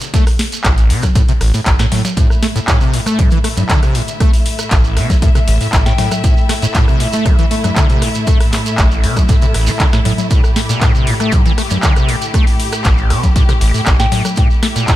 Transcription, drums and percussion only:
0.01 snare, closed hi-hat, shekere
0.14 kick, snare, closed hi-hat, shekere
0.27 cross-stick, open hi-hat, shekere
0.39 snare, closed hi-hat, open hi-hat
0.52 closed hi-hat, shekere
0.64 kick, cross-stick, snare, clap, closed hi-hat, shekere
0.78 closed hi-hat, shekere
0.90 snare, closed hi-hat, open hi-hat
1.03 kick, cross-stick, snare, closed hi-hat, low conga, shekere
1.15 kick, closed hi-hat, shekere
1.28 closed hi-hat, shekere
1.41 cross-stick, snare, closed hi-hat, open hi-hat
1.54 snare, open hi-hat, shekere
1.66 kick, snare, clap, closed hi-hat, shekere
1.79 cross-stick, snare, closed hi-hat, shekere
1.92 snare, closed hi-hat, open hi-hat, low conga
2.05 snare, closed hi-hat, low conga, shekere
2.17 kick, closed hi-hat, shekere
2.30 cross-stick, shekere
2.43 snare, closed hi-hat, open hi-hat
2.56 snare, closed hi-hat, shekere
2.68 kick, cross-stick, snare, clap, closed hi-hat, shekere
2.81 shekere
2.93 closed hi-hat, open hi-hat
3.06 cross-stick, closed hi-hat, shekere
3.19 kick, closed hi-hat, low conga, shekere
3.31 closed hi-hat, shekere
3.44 cross-stick, closed hi-hat, open hi-hat
3.57 closed hi-hat, low conga, shekere
3.69 kick, snare, clap, closed hi-hat, shekere
3.83 cross-stick, closed hi-hat, shekere
3.95 closed hi-hat, open hi-hat
4.08 closed hi-hat, shekere
4.20 kick, cross-stick, closed hi-hat, shekere
4.33 open hi-hat, shekere
4.46 closed hi-hat, open hi-hat
4.59 cross-stick, closed hi-hat, shekere
4.71 kick, snare, clap, closed hi-hat, shekere
4.84 shekere
4.97 cross-stick, snare, closed hi-hat, open hi-hat
5.10 kick, snare, closed hi-hat, low conga, shekere
5.22 kick, closed hi-hat, shekere
5.35 cross-stick, closed hi-hat, shekere
5.48 snare, closed hi-hat, open hi-hat
5.61 open hi-hat, shekere
5.73 kick, cross-stick, snare, clap, closed hi-hat, shekere
5.86 snare, closed hi-hat, shekere
5.98 snare, closed hi-hat, open hi-hat, low conga
6.11 cross-stick, closed hi-hat, low conga, shekere
6.24 kick, closed hi-hat, shekere
6.37 shekere
6.49 cross-stick, snare, closed hi-hat, open hi-hat
6.62 snare, closed hi-hat, shekere
6.74 kick, snare, clap, closed hi-hat, shekere
6.88 cross-stick, shekere
7.00 closed hi-hat, open hi-hat
7.13 closed hi-hat, shekere
7.26 kick, cross-stick, closed hi-hat, low conga, shekere
7.38 closed hi-hat, shekere
7.51 closed hi-hat, open hi-hat
7.64 cross-stick, closed hi-hat, low conga, shekere
7.76 kick, snare, clap, closed hi-hat, shekere
7.90 closed hi-hat, shekere
8.02 cross-stick, closed hi-hat, open hi-hat
8.15 closed hi-hat, shekere
8.27 kick, closed hi-hat, shekere
8.40 cross-stick, open hi-hat, shekere
8.53 snare, clap, closed hi-hat, open hi-hat
8.66 closed hi-hat, shekere
8.78 kick, cross-stick, snare, clap, closed hi-hat, shekere
8.91 shekere
9.04 snare, closed hi-hat, open hi-hat
9.17 kick, cross-stick, snare, closed hi-hat, low conga, shekere
9.29 kick, closed hi-hat, shekere
9.42 closed hi-hat, shekere
9.54 cross-stick, closed hi-hat, open hi-hat
9.67 snare, open hi-hat, shekere
9.80 kick, snare, clap, closed hi-hat, shekere
9.93 cross-stick, snare, closed hi-hat, shekere
10.05 closed hi-hat, open hi-hat, low conga
10.18 closed hi-hat, low conga, shekere
10.31 kick, closed hi-hat, shekere
10.44 cross-stick, shekere
10.56 snare, closed hi-hat, open hi-hat
10.69 snare, closed hi-hat, shekere
10.81 kick, cross-stick, snare, clap, closed hi-hat, shekere
10.95 shekere
11.07 closed hi-hat, open hi-hat
11.20 cross-stick, closed hi-hat, shekere
11.32 kick, closed hi-hat, low conga, shekere
11.46 closed hi-hat, shekere
11.58 cross-stick, closed hi-hat, open hi-hat
11.70 closed hi-hat, low conga, shekere
11.83 kick, snare, clap, closed hi-hat, shekere
11.96 cross-stick, closed hi-hat, shekere
12.09 closed hi-hat, open hi-hat
12.22 closed hi-hat, shekere
12.34 kick, cross-stick, closed hi-hat, shekere
12.47 open hi-hat, shekere
12.60 closed hi-hat, open hi-hat
12.73 cross-stick, closed hi-hat, shekere
12.84 kick, snare, clap, closed hi-hat, shekere
12.98 shekere
13.10 cross-stick, snare, closed hi-hat, open hi-hat
13.23 kick, snare, closed hi-hat, low conga, shekere
13.36 kick, closed hi-hat, shekere
13.49 cross-stick, closed hi-hat, shekere
13.61 snare, closed hi-hat, open hi-hat
13.74 open hi-hat, shekere
13.86 kick, cross-stick, snare, clap, closed hi-hat, shekere
14.00 snare, closed hi-hat, shekere
14.12 snare, closed hi-hat, open hi-hat, low conga
14.25 cross-stick, closed hi-hat, low conga, shekere
14.36 kick, closed hi-hat, shekere
14.50 shekere
14.63 cross-stick, snare, closed hi-hat, open hi-hat
14.76 snare, closed hi-hat, shekere
14.88 kick, snare, clap, closed hi-hat, shekere

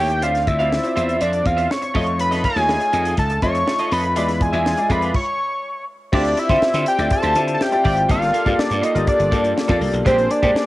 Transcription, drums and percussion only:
0.10 closed hi-hat
0.23 closed hi-hat
0.35 snare, closed hi-hat
0.47 kick, closed hi-hat
0.60 closed hi-hat
0.73 snare
0.84 closed hi-hat
0.97 closed hi-hat
1.09 closed hi-hat
1.21 closed hi-hat
1.33 closed hi-hat
1.46 kick, closed hi-hat
1.58 closed hi-hat
1.71 snare
1.82 closed hi-hat
1.95 kick, open hi-hat
2.07 closed hi-hat
2.19 closed hi-hat
2.32 snare, closed hi-hat
2.44 kick, closed hi-hat
2.56 snare, closed hi-hat
2.69 snare
2.81 closed hi-hat
2.93 closed hi-hat
3.05 closed hi-hat
3.17 kick, closed hi-hat
3.30 closed hi-hat
3.42 kick, closed hi-hat
3.55 closed hi-hat
3.67 snare
3.79 closed hi-hat
3.91 open hi-hat
4.04 closed hi-hat
4.16 closed hi-hat
4.29 snare, closed hi-hat
4.41 kick, closed hi-hat
4.53 closed hi-hat
4.66 snare
4.77 closed hi-hat
4.90 kick, closed hi-hat
5.02 closed hi-hat
5.14 kick, crash
6.13 kick, crash
6.25 closed hi-hat
6.37 closed hi-hat
6.49 kick, snare, closed hi-hat
6.62 snare
6.74 closed hi-hat
6.86 closed hi-hat
6.99 closed hi-hat
7.10 kick, closed hi-hat
7.23 closed hi-hat
7.35 closed hi-hat
7.48 closed hi-hat
7.61 snare
7.72 closed hi-hat
7.85 kick, open hi-hat
7.97 closed hi-hat
8.09 kick, closed hi-hat
8.22 snare, closed hi-hat
8.34 closed hi-hat
8.46 kick, closed hi-hat
8.59 snare
8.71 closed hi-hat
8.83 closed hi-hat
8.96 closed hi-hat
9.07 kick, closed hi-hat
9.20 closed hi-hat
9.32 kick, closed hi-hat
9.45 closed hi-hat
9.58 snare
9.69 kick, closed hi-hat
9.81 open hi-hat
9.94 closed hi-hat
10.06 kick, closed hi-hat
10.18 closed hi-hat
10.30 closed hi-hat
10.43 kick, closed hi-hat
10.56 snare

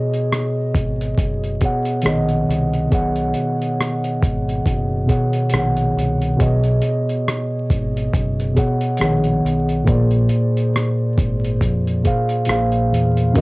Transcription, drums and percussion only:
0.14 closed hi-hat
0.32 cross-stick, closed hi-hat
0.74 kick, closed hi-hat
1.01 closed hi-hat
1.18 kick, closed hi-hat
1.44 closed hi-hat
1.61 kick, closed hi-hat
1.85 closed hi-hat
2.02 closed hi-hat
2.06 cross-stick
2.29 closed hi-hat
2.51 closed hi-hat
2.74 closed hi-hat
2.92 kick, closed hi-hat
3.16 closed hi-hat
3.34 closed hi-hat
3.62 closed hi-hat
3.80 cross-stick, closed hi-hat
4.04 closed hi-hat
4.22 kick, closed hi-hat
4.49 closed hi-hat
4.66 kick, closed hi-hat
5.09 kick, closed hi-hat
5.33 closed hi-hat
5.50 closed hi-hat
5.54 cross-stick
5.77 closed hi-hat
5.99 closed hi-hat
6.21 closed hi-hat
6.40 kick, closed hi-hat
6.64 closed hi-hat
6.82 closed hi-hat
7.10 closed hi-hat
7.28 cross-stick, closed hi-hat
7.70 kick, closed hi-hat
7.97 closed hi-hat
8.13 kick, closed hi-hat
8.39 closed hi-hat
8.57 kick, closed hi-hat
8.81 closed hi-hat
8.97 closed hi-hat
9.01 cross-stick
9.24 closed hi-hat
9.46 closed hi-hat
9.69 closed hi-hat
9.87 kick, closed hi-hat
10.11 closed hi-hat
10.29 closed hi-hat
10.57 closed hi-hat
10.76 cross-stick, closed hi-hat
11.18 kick, closed hi-hat
11.45 closed hi-hat
11.61 kick, closed hi-hat
11.87 closed hi-hat
12.05 kick, closed hi-hat
12.29 closed hi-hat
12.45 closed hi-hat
12.49 cross-stick
12.72 closed hi-hat
12.94 closed hi-hat
13.17 closed hi-hat
13.35 kick, closed hi-hat

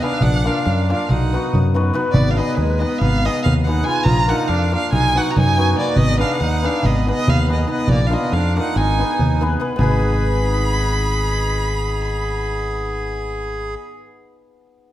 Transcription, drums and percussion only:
0.02 darbuka tek
0.21 darbuka dum
0.33 darbuka tek
0.46 darbuka tek
0.56 darbuka tek
0.66 darbuka tek
0.78 darbuka tek
0.90 darbuka tek
1.09 darbuka tek, darbuka dum
1.22 darbuka tek
1.34 darbuka tek
1.44 darbuka tek
1.53 darbuka dum
1.76 darbuka tek
1.85 darbuka tek
1.94 darbuka tek
2.05 darbuka tek
2.14 darbuka dum
2.38 darbuka tek
2.57 darbuka tek
2.82 darbuka tek
2.92 darbuka tek
3.01 darbuka tek, darbuka dum
3.26 darbuka tek
3.46 darbuka dum
3.67 darbuka tek
3.76 darbuka tek
3.86 darbuka tek
3.95 darbuka tek
4.05 darbuka dum
4.39 darbuka tek
4.49 darbuka tek
4.73 darbuka tek
4.83 darbuka tek
4.93 darbuka tek, darbuka dum
5.17 darbuka tek
5.36 darbuka dum
5.58 darbuka tek
5.69 darbuka tek
5.77 darbuka tek
5.87 darbuka tek
5.96 darbuka dum
6.21 darbuka tek
6.31 darbuka tek
6.40 darbuka tek
6.65 darbuka tek
6.74 darbuka tek
6.83 darbuka tek, darbuka dum
7.08 darbuka tek
7.28 darbuka dum
7.50 darbuka tek
7.59 darbuka tek
7.78 darbuka tek
7.87 darbuka dum
8.00 darbuka tek
8.13 darbuka tek
8.22 darbuka tek
8.32 darbuka tek
8.57 darbuka tek
8.76 darbuka tek
8.89 darbuka tek
9.01 darbuka tek
9.11 darbuka tek
9.20 darbuka dum
9.32 darbuka tek
9.43 darbuka tek
9.61 darbuka tek
9.71 darbuka tek
9.80 darbuka dum

